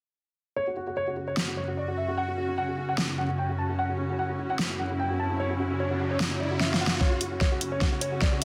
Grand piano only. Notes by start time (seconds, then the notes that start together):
0.56 C#5
0.67 F#4
0.77 F#4
0.87 F#4
0.97 C#5
1.07 F#4
1.17 F#4
1.28 C#5
1.37 F#4
1.48 F#4
1.57 C#5
1.68 F#4
1.77 D5
1.88 F#4
1.97 E5
2.08 F#4
2.17 F#5
2.28 F#4
2.38 F#4
2.48 F#4
2.58 F#5
2.69 F#4
2.78 F#4
2.89 F#5
2.98 F#4
3.09 F#4
3.18 F#5
3.29 F#4
3.38 G5
3.49 F#4
3.58 A5
3.69 F#4
3.79 F#5
3.89 F#4
3.99 F#4
4.09 F#4
4.19 F#5
4.30 F#4
4.39 F#4
4.50 F#5
4.59 F#4
4.70 F#4
4.79 F#5
4.90 F#4
4.99 G5
5.10 F#4
5.20 A5
5.30 F#4
5.40 C#5
5.50 F#4
5.60 F#4
5.71 F#4
5.80 C#5
5.91 F#4
6.00 F#4
6.11 C#5
6.20 F#4
6.31 F#4
6.40 D5
6.51 F#4
6.60 E5
6.71 F#4
6.81 F#5
6.91 F#4
7.01 C#5
7.11 F#4
7.21 F#4
7.32 F#4
7.41 C#5
7.52 F#4
7.61 F#4
7.72 C#5
7.81 F#4
7.92 F#4
8.01 C#5
8.12 F#4
8.21 D5
8.32 F#4